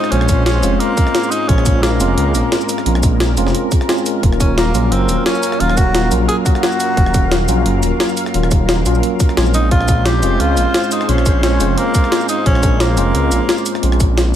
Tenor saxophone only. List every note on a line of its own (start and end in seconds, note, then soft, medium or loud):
0.00 0.13 D#4 loud
0.12 0.45 C#4 loud
0.45 0.81 C#4 loud
0.79 1.32 A#3 loud
1.31 1.50 D#4 loud
1.48 1.84 C#4 loud
1.83 2.86 A#3 medium
4.40 4.56 C#4 medium
4.58 4.93 A#3 medium
4.92 5.25 C4 loud
5.26 5.62 C#4 loud
5.60 5.79 F4 loud
5.77 6.12 F#4 loud
6.28 6.36 G#4 loud
6.45 7.79 F#4 loud
9.54 9.70 D#4 loud
9.72 10.07 F4 loud
10.06 10.42 G4 loud
10.40 10.92 F4 loud
10.92 11.11 D#4 loud
11.09 11.42 C#4 loud
11.43 11.79 C#4 loud
11.78 12.28 A#3 loud
12.29 12.45 D#4 medium
12.46 12.82 C#4 loud
12.80 13.83 A#3 medium